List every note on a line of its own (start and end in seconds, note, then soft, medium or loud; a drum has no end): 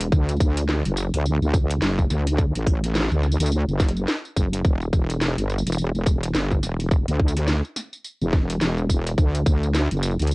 0.00 0.11 E1 medium
0.00 closed hi-hat medium
0.00 tambourine soft
0.12 0.39 D2 loud
0.12 kick loud
0.12 tambourine soft
0.29 closed hi-hat medium
0.29 tambourine soft
0.31 tambourine soft
0.36 0.83 D2 loud
0.36 kick loud
0.36 tambourine soft
0.41 tambourine medium
0.50 tambourine soft
0.57 closed hi-hat medium
0.57 tambourine soft
0.69 snare loud
0.85 1.11 F#1 loud
0.85 closed hi-hat medium
0.85 tambourine soft
0.97 tambourine medium
1.14 1.39 D2 loud
1.14 closed hi-hat medium
1.14 tambourine soft
1.25 tambourine soft
1.42 1.80 D2 medium
1.42 tambourine soft
1.54 kick loud
1.54 tambourine medium
1.70 closed hi-hat medium
1.70 tambourine soft
1.82 2.08 F#1 loud
1.82 snare loud
1.82 tambourine soft
1.99 kick medium
1.99 tambourine soft
2.10 2.53 D2 loud
2.10 snare soft
2.10 tambourine medium
2.27 closed hi-hat medium
2.27 tambourine soft
2.38 kick loud
2.38 tambourine soft
2.55 3.09 A1 medium
2.55 closed hi-hat medium
2.55 tambourine soft
2.67 kick loud
2.67 tambourine medium
2.84 snare soft
2.84 closed hi-hat medium
2.84 tambourine soft
2.86 snare soft
2.91 snare soft
2.95 snare loud
2.95 snare soft
2.95 tambourine soft
2.98 snare medium
3.01 snare medium
3.01 snare soft
3.03 snare medium
3.03 snare soft
3.09 3.37 D2 loud
3.09 snare soft
3.09 tambourine soft
3.23 snare soft
3.23 tambourine soft
3.32 tambourine soft
3.39 3.65 D2 loud
3.39 closed hi-hat medium
3.39 tambourine medium
3.46 tambourine medium
3.52 tambourine soft
3.68 4.06 F#1 loud
3.68 tambourine soft
3.80 kick loud
3.80 snare medium
3.80 tambourine medium
3.89 closed hi-hat medium
3.97 tambourine soft
4.08 snare loud
4.08 tambourine soft
4.25 tambourine soft
4.36 4.63 F#1 loud
4.36 kick medium
4.36 tambourine medium
4.53 closed hi-hat medium
4.53 tambourine soft
4.65 4.91 E1 loud
4.65 kick loud
4.65 tambourine soft
4.82 tambourine soft
4.93 5.36 E1 loud
4.93 kick loud
4.93 tambourine medium
5.10 closed hi-hat medium
5.10 tambourine soft
5.21 snare loud
5.21 tambourine soft
5.37 5.63 G1 loud
5.37 closed hi-hat medium
5.37 tambourine soft
5.50 tambourine soft
5.58 tambourine soft
5.66 5.92 E1 medium
5.66 closed hi-hat medium
5.66 tambourine medium
5.72 tambourine medium
5.78 tambourine soft
5.94 6.33 E1 loud
5.94 tambourine soft
6.06 kick loud
6.06 tambourine medium
6.23 closed hi-hat medium
6.23 tambourine soft
6.34 6.61 G1 loud
6.34 snare loud
6.34 tambourine soft
6.51 kick medium
6.51 tambourine soft
6.63 7.05 E1 loud
6.63 snare soft
6.63 tambourine medium
6.80 closed hi-hat medium
6.80 tambourine soft
6.91 kick loud
6.91 tambourine soft
7.08 7.62 D2 loud
7.08 closed hi-hat medium
7.08 tambourine soft
7.20 kick loud
7.28 tambourine medium
7.37 snare soft
7.37 closed hi-hat medium
7.37 tambourine soft
7.48 snare loud
7.48 tambourine soft
7.65 tambourine soft
7.76 snare soft
7.76 tambourine medium
7.93 tambourine soft
8.04 tambourine soft
8.21 8.59 E1 loud
8.21 tambourine soft
8.33 kick loud
8.33 snare medium
8.50 closed hi-hat medium
8.50 tambourine soft
8.61 9.16 E1 loud
8.61 snare loud
8.61 tambourine soft
8.78 tambourine soft
8.89 kick medium
8.89 tambourine medium
9.07 closed hi-hat medium
9.07 tambourine soft
9.18 9.44 D2 loud
9.18 kick loud
9.18 tambourine soft
9.35 closed hi-hat medium
9.35 tambourine soft
9.46 9.88 D2 loud
9.46 kick loud
9.46 tambourine medium
9.63 tambourine soft
9.75 snare loud
9.75 tambourine soft
9.91 10.17 F#1 loud
9.91 closed hi-hat medium
9.91 tambourine soft
9.97 tambourine soft
10.03 tambourine medium
10.11 tambourine soft
10.19 10.35 D2 loud
10.19 closed hi-hat soft
10.19 tambourine soft
10.22 closed hi-hat soft
10.27 closed hi-hat soft
10.27 tambourine soft